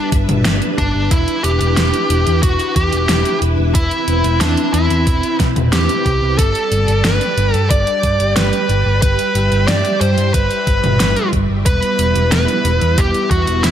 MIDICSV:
0, 0, Header, 1, 5, 480
1, 0, Start_track
1, 0, Key_signature, 1, "major"
1, 0, Tempo, 659341
1, 809, Time_signature, 4, 2, 24, 8
1, 9981, End_track
2, 0, Start_track
2, 0, Title_t, "Lead electric guitar"
2, 0, Program_c, 0, 29
2, 570, Note_on_c, 0, 62, 90
2, 809, Note_on_c, 0, 64, 100
2, 817, Note_off_c, 0, 62, 0
2, 1048, Note_off_c, 0, 64, 0
2, 1050, Note_on_c, 0, 67, 107
2, 1765, Note_off_c, 0, 67, 0
2, 1768, Note_on_c, 0, 66, 102
2, 1992, Note_off_c, 0, 66, 0
2, 2009, Note_on_c, 0, 67, 90
2, 2460, Note_off_c, 0, 67, 0
2, 2728, Note_on_c, 0, 64, 110
2, 3206, Note_off_c, 0, 64, 0
2, 3209, Note_on_c, 0, 62, 100
2, 3445, Note_off_c, 0, 62, 0
2, 3448, Note_on_c, 0, 64, 89
2, 3899, Note_off_c, 0, 64, 0
2, 4169, Note_on_c, 0, 67, 86
2, 4645, Note_off_c, 0, 67, 0
2, 4647, Note_on_c, 0, 69, 97
2, 5127, Note_on_c, 0, 71, 98
2, 5143, Note_off_c, 0, 69, 0
2, 5498, Note_off_c, 0, 71, 0
2, 5498, Note_on_c, 0, 69, 98
2, 5605, Note_off_c, 0, 69, 0
2, 5607, Note_on_c, 0, 74, 103
2, 6059, Note_off_c, 0, 74, 0
2, 6087, Note_on_c, 0, 71, 100
2, 6557, Note_off_c, 0, 71, 0
2, 6566, Note_on_c, 0, 71, 106
2, 7043, Note_off_c, 0, 71, 0
2, 7046, Note_on_c, 0, 74, 104
2, 7283, Note_off_c, 0, 74, 0
2, 7286, Note_on_c, 0, 72, 87
2, 7524, Note_off_c, 0, 72, 0
2, 7527, Note_on_c, 0, 71, 87
2, 8219, Note_off_c, 0, 71, 0
2, 8487, Note_on_c, 0, 71, 107
2, 8959, Note_off_c, 0, 71, 0
2, 8968, Note_on_c, 0, 71, 109
2, 9450, Note_on_c, 0, 67, 100
2, 9463, Note_off_c, 0, 71, 0
2, 9673, Note_off_c, 0, 67, 0
2, 9688, Note_on_c, 0, 66, 88
2, 9927, Note_off_c, 0, 66, 0
2, 9929, Note_on_c, 0, 64, 91
2, 9981, Note_off_c, 0, 64, 0
2, 9981, End_track
3, 0, Start_track
3, 0, Title_t, "String machine"
3, 0, Program_c, 1, 50
3, 0, Note_on_c, 1, 55, 82
3, 0, Note_on_c, 1, 62, 80
3, 0, Note_on_c, 1, 71, 92
3, 0, Note_on_c, 1, 76, 93
3, 780, Note_off_c, 1, 55, 0
3, 790, Note_off_c, 1, 76, 0
3, 811, Note_on_c, 1, 64, 85
3, 2700, Note_off_c, 1, 62, 0
3, 2731, Note_on_c, 1, 60, 85
3, 4620, Note_off_c, 1, 71, 0
3, 4621, Note_off_c, 1, 64, 0
3, 4631, Note_off_c, 1, 60, 0
3, 4650, Note_on_c, 1, 55, 84
3, 4650, Note_on_c, 1, 67, 76
3, 4650, Note_on_c, 1, 74, 94
3, 6550, Note_off_c, 1, 74, 0
3, 6568, Note_on_c, 1, 76, 94
3, 8461, Note_off_c, 1, 67, 0
3, 8469, Note_off_c, 1, 76, 0
3, 8486, Note_on_c, 1, 59, 75
3, 8486, Note_on_c, 1, 64, 88
3, 9981, Note_off_c, 1, 55, 0
3, 9981, Note_off_c, 1, 59, 0
3, 9981, Note_off_c, 1, 64, 0
3, 9981, End_track
4, 0, Start_track
4, 0, Title_t, "Picked electric bass"
4, 0, Program_c, 2, 34
4, 90, Note_on_c, 2, 31, 95
4, 190, Note_off_c, 2, 31, 0
4, 210, Note_on_c, 2, 31, 79
4, 310, Note_off_c, 2, 31, 0
4, 331, Note_on_c, 2, 31, 100
4, 430, Note_off_c, 2, 31, 0
4, 570, Note_on_c, 2, 31, 91
4, 670, Note_off_c, 2, 31, 0
4, 690, Note_on_c, 2, 31, 79
4, 790, Note_off_c, 2, 31, 0
4, 810, Note_on_c, 2, 28, 94
4, 910, Note_off_c, 2, 28, 0
4, 1050, Note_on_c, 2, 28, 92
4, 1150, Note_off_c, 2, 28, 0
4, 1169, Note_on_c, 2, 28, 79
4, 1270, Note_off_c, 2, 28, 0
4, 1290, Note_on_c, 2, 28, 97
4, 1390, Note_off_c, 2, 28, 0
4, 1530, Note_on_c, 2, 28, 90
4, 1630, Note_off_c, 2, 28, 0
4, 1650, Note_on_c, 2, 40, 81
4, 1750, Note_off_c, 2, 40, 0
4, 1770, Note_on_c, 2, 28, 99
4, 1870, Note_off_c, 2, 28, 0
4, 2010, Note_on_c, 2, 40, 90
4, 2110, Note_off_c, 2, 40, 0
4, 2129, Note_on_c, 2, 28, 79
4, 2229, Note_off_c, 2, 28, 0
4, 2249, Note_on_c, 2, 28, 98
4, 2349, Note_off_c, 2, 28, 0
4, 2489, Note_on_c, 2, 28, 88
4, 2589, Note_off_c, 2, 28, 0
4, 2609, Note_on_c, 2, 28, 78
4, 2710, Note_off_c, 2, 28, 0
4, 2730, Note_on_c, 2, 28, 96
4, 2830, Note_off_c, 2, 28, 0
4, 2969, Note_on_c, 2, 28, 83
4, 3070, Note_off_c, 2, 28, 0
4, 3089, Note_on_c, 2, 28, 81
4, 3189, Note_off_c, 2, 28, 0
4, 3208, Note_on_c, 2, 40, 92
4, 3309, Note_off_c, 2, 40, 0
4, 3449, Note_on_c, 2, 40, 90
4, 3549, Note_off_c, 2, 40, 0
4, 3570, Note_on_c, 2, 40, 74
4, 3670, Note_off_c, 2, 40, 0
4, 3690, Note_on_c, 2, 28, 90
4, 3790, Note_off_c, 2, 28, 0
4, 3930, Note_on_c, 2, 35, 88
4, 4030, Note_off_c, 2, 35, 0
4, 4050, Note_on_c, 2, 28, 81
4, 4150, Note_off_c, 2, 28, 0
4, 4170, Note_on_c, 2, 40, 93
4, 4270, Note_off_c, 2, 40, 0
4, 4410, Note_on_c, 2, 36, 87
4, 4510, Note_off_c, 2, 36, 0
4, 4531, Note_on_c, 2, 36, 74
4, 4630, Note_off_c, 2, 36, 0
4, 4650, Note_on_c, 2, 31, 91
4, 4750, Note_off_c, 2, 31, 0
4, 4890, Note_on_c, 2, 31, 87
4, 4990, Note_off_c, 2, 31, 0
4, 5010, Note_on_c, 2, 31, 75
4, 5110, Note_off_c, 2, 31, 0
4, 5130, Note_on_c, 2, 31, 91
4, 5230, Note_off_c, 2, 31, 0
4, 5370, Note_on_c, 2, 31, 87
4, 5470, Note_off_c, 2, 31, 0
4, 5491, Note_on_c, 2, 43, 76
4, 5590, Note_off_c, 2, 43, 0
4, 5610, Note_on_c, 2, 31, 91
4, 5710, Note_off_c, 2, 31, 0
4, 5850, Note_on_c, 2, 43, 88
4, 5950, Note_off_c, 2, 43, 0
4, 5970, Note_on_c, 2, 31, 76
4, 6070, Note_off_c, 2, 31, 0
4, 6089, Note_on_c, 2, 31, 97
4, 6189, Note_off_c, 2, 31, 0
4, 6329, Note_on_c, 2, 31, 89
4, 6429, Note_off_c, 2, 31, 0
4, 6449, Note_on_c, 2, 31, 81
4, 6549, Note_off_c, 2, 31, 0
4, 6570, Note_on_c, 2, 31, 94
4, 6670, Note_off_c, 2, 31, 0
4, 6808, Note_on_c, 2, 31, 91
4, 6909, Note_off_c, 2, 31, 0
4, 6928, Note_on_c, 2, 31, 78
4, 7029, Note_off_c, 2, 31, 0
4, 7049, Note_on_c, 2, 43, 98
4, 7150, Note_off_c, 2, 43, 0
4, 7288, Note_on_c, 2, 43, 90
4, 7389, Note_off_c, 2, 43, 0
4, 7409, Note_on_c, 2, 43, 76
4, 7510, Note_off_c, 2, 43, 0
4, 7529, Note_on_c, 2, 31, 96
4, 7630, Note_off_c, 2, 31, 0
4, 7770, Note_on_c, 2, 31, 95
4, 7870, Note_off_c, 2, 31, 0
4, 7889, Note_on_c, 2, 31, 79
4, 7990, Note_off_c, 2, 31, 0
4, 8008, Note_on_c, 2, 31, 98
4, 8109, Note_off_c, 2, 31, 0
4, 8249, Note_on_c, 2, 31, 96
4, 8350, Note_off_c, 2, 31, 0
4, 8369, Note_on_c, 2, 31, 77
4, 8469, Note_off_c, 2, 31, 0
4, 8489, Note_on_c, 2, 28, 99
4, 8590, Note_off_c, 2, 28, 0
4, 8729, Note_on_c, 2, 28, 85
4, 8830, Note_off_c, 2, 28, 0
4, 8850, Note_on_c, 2, 28, 80
4, 8950, Note_off_c, 2, 28, 0
4, 8968, Note_on_c, 2, 28, 96
4, 9069, Note_off_c, 2, 28, 0
4, 9209, Note_on_c, 2, 28, 87
4, 9309, Note_off_c, 2, 28, 0
4, 9329, Note_on_c, 2, 40, 81
4, 9429, Note_off_c, 2, 40, 0
4, 9449, Note_on_c, 2, 28, 95
4, 9549, Note_off_c, 2, 28, 0
4, 9689, Note_on_c, 2, 40, 96
4, 9789, Note_off_c, 2, 40, 0
4, 9808, Note_on_c, 2, 28, 83
4, 9909, Note_off_c, 2, 28, 0
4, 9929, Note_on_c, 2, 28, 95
4, 9981, Note_off_c, 2, 28, 0
4, 9981, End_track
5, 0, Start_track
5, 0, Title_t, "Drums"
5, 89, Note_on_c, 9, 42, 65
5, 90, Note_on_c, 9, 36, 106
5, 162, Note_off_c, 9, 42, 0
5, 163, Note_off_c, 9, 36, 0
5, 210, Note_on_c, 9, 42, 42
5, 210, Note_on_c, 9, 47, 91
5, 283, Note_off_c, 9, 42, 0
5, 283, Note_off_c, 9, 47, 0
5, 329, Note_on_c, 9, 38, 123
5, 329, Note_on_c, 9, 42, 87
5, 402, Note_off_c, 9, 38, 0
5, 402, Note_off_c, 9, 42, 0
5, 450, Note_on_c, 9, 42, 38
5, 523, Note_off_c, 9, 42, 0
5, 570, Note_on_c, 9, 36, 58
5, 570, Note_on_c, 9, 42, 37
5, 642, Note_off_c, 9, 42, 0
5, 643, Note_off_c, 9, 36, 0
5, 810, Note_on_c, 9, 36, 124
5, 810, Note_on_c, 9, 42, 89
5, 882, Note_off_c, 9, 42, 0
5, 883, Note_off_c, 9, 36, 0
5, 930, Note_on_c, 9, 42, 36
5, 1003, Note_off_c, 9, 42, 0
5, 1049, Note_on_c, 9, 42, 65
5, 1122, Note_off_c, 9, 42, 0
5, 1169, Note_on_c, 9, 42, 38
5, 1242, Note_off_c, 9, 42, 0
5, 1290, Note_on_c, 9, 38, 117
5, 1290, Note_on_c, 9, 42, 91
5, 1362, Note_off_c, 9, 38, 0
5, 1362, Note_off_c, 9, 42, 0
5, 1409, Note_on_c, 9, 42, 40
5, 1482, Note_off_c, 9, 42, 0
5, 1530, Note_on_c, 9, 42, 62
5, 1603, Note_off_c, 9, 42, 0
5, 1650, Note_on_c, 9, 42, 38
5, 1723, Note_off_c, 9, 42, 0
5, 1769, Note_on_c, 9, 42, 91
5, 1770, Note_on_c, 9, 36, 120
5, 1842, Note_off_c, 9, 42, 0
5, 1843, Note_off_c, 9, 36, 0
5, 1889, Note_on_c, 9, 42, 38
5, 1962, Note_off_c, 9, 42, 0
5, 2009, Note_on_c, 9, 42, 65
5, 2010, Note_on_c, 9, 36, 60
5, 2082, Note_off_c, 9, 42, 0
5, 2083, Note_off_c, 9, 36, 0
5, 2129, Note_on_c, 9, 42, 38
5, 2202, Note_off_c, 9, 42, 0
5, 2249, Note_on_c, 9, 38, 120
5, 2249, Note_on_c, 9, 42, 91
5, 2322, Note_off_c, 9, 38, 0
5, 2322, Note_off_c, 9, 42, 0
5, 2369, Note_on_c, 9, 42, 38
5, 2442, Note_off_c, 9, 42, 0
5, 2489, Note_on_c, 9, 42, 37
5, 2562, Note_off_c, 9, 42, 0
5, 2729, Note_on_c, 9, 42, 91
5, 2730, Note_on_c, 9, 36, 119
5, 2802, Note_off_c, 9, 42, 0
5, 2803, Note_off_c, 9, 36, 0
5, 2849, Note_on_c, 9, 42, 35
5, 2922, Note_off_c, 9, 42, 0
5, 2969, Note_on_c, 9, 42, 64
5, 3041, Note_off_c, 9, 42, 0
5, 3089, Note_on_c, 9, 42, 36
5, 3162, Note_off_c, 9, 42, 0
5, 3209, Note_on_c, 9, 38, 115
5, 3209, Note_on_c, 9, 42, 92
5, 3282, Note_off_c, 9, 38, 0
5, 3282, Note_off_c, 9, 42, 0
5, 3330, Note_on_c, 9, 42, 37
5, 3402, Note_off_c, 9, 42, 0
5, 3450, Note_on_c, 9, 42, 60
5, 3523, Note_off_c, 9, 42, 0
5, 3570, Note_on_c, 9, 42, 36
5, 3643, Note_off_c, 9, 42, 0
5, 3690, Note_on_c, 9, 36, 118
5, 3690, Note_on_c, 9, 42, 85
5, 3763, Note_off_c, 9, 36, 0
5, 3763, Note_off_c, 9, 42, 0
5, 3810, Note_on_c, 9, 42, 37
5, 3883, Note_off_c, 9, 42, 0
5, 3930, Note_on_c, 9, 36, 100
5, 3930, Note_on_c, 9, 38, 60
5, 3930, Note_on_c, 9, 42, 65
5, 4003, Note_off_c, 9, 36, 0
5, 4003, Note_off_c, 9, 38, 0
5, 4003, Note_off_c, 9, 42, 0
5, 4049, Note_on_c, 9, 42, 38
5, 4049, Note_on_c, 9, 47, 83
5, 4122, Note_off_c, 9, 42, 0
5, 4122, Note_off_c, 9, 47, 0
5, 4169, Note_on_c, 9, 38, 121
5, 4169, Note_on_c, 9, 42, 87
5, 4242, Note_off_c, 9, 38, 0
5, 4242, Note_off_c, 9, 42, 0
5, 4290, Note_on_c, 9, 42, 37
5, 4363, Note_off_c, 9, 42, 0
5, 4410, Note_on_c, 9, 36, 60
5, 4410, Note_on_c, 9, 42, 37
5, 4482, Note_off_c, 9, 42, 0
5, 4483, Note_off_c, 9, 36, 0
5, 4650, Note_on_c, 9, 36, 116
5, 4650, Note_on_c, 9, 42, 85
5, 4723, Note_off_c, 9, 36, 0
5, 4723, Note_off_c, 9, 42, 0
5, 4769, Note_on_c, 9, 42, 38
5, 4842, Note_off_c, 9, 42, 0
5, 4890, Note_on_c, 9, 42, 59
5, 4962, Note_off_c, 9, 42, 0
5, 5009, Note_on_c, 9, 42, 38
5, 5082, Note_off_c, 9, 42, 0
5, 5129, Note_on_c, 9, 38, 115
5, 5129, Note_on_c, 9, 42, 82
5, 5202, Note_off_c, 9, 38, 0
5, 5202, Note_off_c, 9, 42, 0
5, 5250, Note_on_c, 9, 42, 38
5, 5322, Note_off_c, 9, 42, 0
5, 5370, Note_on_c, 9, 42, 58
5, 5442, Note_off_c, 9, 42, 0
5, 5489, Note_on_c, 9, 42, 36
5, 5562, Note_off_c, 9, 42, 0
5, 5610, Note_on_c, 9, 36, 118
5, 5610, Note_on_c, 9, 42, 82
5, 5682, Note_off_c, 9, 42, 0
5, 5683, Note_off_c, 9, 36, 0
5, 5730, Note_on_c, 9, 42, 34
5, 5802, Note_off_c, 9, 42, 0
5, 5849, Note_on_c, 9, 42, 61
5, 5850, Note_on_c, 9, 36, 58
5, 5922, Note_off_c, 9, 42, 0
5, 5923, Note_off_c, 9, 36, 0
5, 5969, Note_on_c, 9, 42, 36
5, 6042, Note_off_c, 9, 42, 0
5, 6089, Note_on_c, 9, 38, 112
5, 6089, Note_on_c, 9, 42, 87
5, 6162, Note_off_c, 9, 38, 0
5, 6162, Note_off_c, 9, 42, 0
5, 6209, Note_on_c, 9, 42, 37
5, 6282, Note_off_c, 9, 42, 0
5, 6329, Note_on_c, 9, 42, 36
5, 6402, Note_off_c, 9, 42, 0
5, 6569, Note_on_c, 9, 42, 90
5, 6570, Note_on_c, 9, 36, 111
5, 6642, Note_off_c, 9, 42, 0
5, 6643, Note_off_c, 9, 36, 0
5, 6689, Note_on_c, 9, 42, 36
5, 6762, Note_off_c, 9, 42, 0
5, 6809, Note_on_c, 9, 42, 60
5, 6882, Note_off_c, 9, 42, 0
5, 6929, Note_on_c, 9, 42, 34
5, 7002, Note_off_c, 9, 42, 0
5, 7049, Note_on_c, 9, 38, 108
5, 7049, Note_on_c, 9, 42, 85
5, 7122, Note_off_c, 9, 38, 0
5, 7122, Note_off_c, 9, 42, 0
5, 7168, Note_on_c, 9, 42, 35
5, 7241, Note_off_c, 9, 42, 0
5, 7289, Note_on_c, 9, 42, 63
5, 7362, Note_off_c, 9, 42, 0
5, 7408, Note_on_c, 9, 42, 36
5, 7481, Note_off_c, 9, 42, 0
5, 7529, Note_on_c, 9, 36, 111
5, 7529, Note_on_c, 9, 42, 88
5, 7602, Note_off_c, 9, 36, 0
5, 7602, Note_off_c, 9, 42, 0
5, 7648, Note_on_c, 9, 42, 35
5, 7721, Note_off_c, 9, 42, 0
5, 7769, Note_on_c, 9, 36, 94
5, 7769, Note_on_c, 9, 42, 58
5, 7842, Note_off_c, 9, 36, 0
5, 7842, Note_off_c, 9, 42, 0
5, 7889, Note_on_c, 9, 42, 37
5, 7889, Note_on_c, 9, 47, 92
5, 7962, Note_off_c, 9, 42, 0
5, 7962, Note_off_c, 9, 47, 0
5, 8009, Note_on_c, 9, 38, 107
5, 8009, Note_on_c, 9, 42, 87
5, 8081, Note_off_c, 9, 38, 0
5, 8081, Note_off_c, 9, 42, 0
5, 8128, Note_on_c, 9, 42, 36
5, 8201, Note_off_c, 9, 42, 0
5, 8248, Note_on_c, 9, 42, 35
5, 8249, Note_on_c, 9, 36, 59
5, 8321, Note_off_c, 9, 42, 0
5, 8322, Note_off_c, 9, 36, 0
5, 8488, Note_on_c, 9, 42, 88
5, 8489, Note_on_c, 9, 36, 108
5, 8560, Note_off_c, 9, 42, 0
5, 8562, Note_off_c, 9, 36, 0
5, 8609, Note_on_c, 9, 42, 39
5, 8681, Note_off_c, 9, 42, 0
5, 8728, Note_on_c, 9, 42, 65
5, 8801, Note_off_c, 9, 42, 0
5, 8849, Note_on_c, 9, 42, 38
5, 8922, Note_off_c, 9, 42, 0
5, 8969, Note_on_c, 9, 38, 109
5, 8969, Note_on_c, 9, 42, 87
5, 9041, Note_off_c, 9, 38, 0
5, 9041, Note_off_c, 9, 42, 0
5, 9088, Note_on_c, 9, 42, 37
5, 9161, Note_off_c, 9, 42, 0
5, 9209, Note_on_c, 9, 42, 61
5, 9281, Note_off_c, 9, 42, 0
5, 9329, Note_on_c, 9, 42, 35
5, 9402, Note_off_c, 9, 42, 0
5, 9448, Note_on_c, 9, 42, 86
5, 9449, Note_on_c, 9, 36, 102
5, 9521, Note_off_c, 9, 42, 0
5, 9522, Note_off_c, 9, 36, 0
5, 9569, Note_on_c, 9, 42, 35
5, 9642, Note_off_c, 9, 42, 0
5, 9689, Note_on_c, 9, 36, 57
5, 9689, Note_on_c, 9, 42, 60
5, 9761, Note_off_c, 9, 36, 0
5, 9762, Note_off_c, 9, 42, 0
5, 9809, Note_on_c, 9, 42, 38
5, 9882, Note_off_c, 9, 42, 0
5, 9929, Note_on_c, 9, 38, 110
5, 9929, Note_on_c, 9, 42, 85
5, 9981, Note_off_c, 9, 38, 0
5, 9981, Note_off_c, 9, 42, 0
5, 9981, End_track
0, 0, End_of_file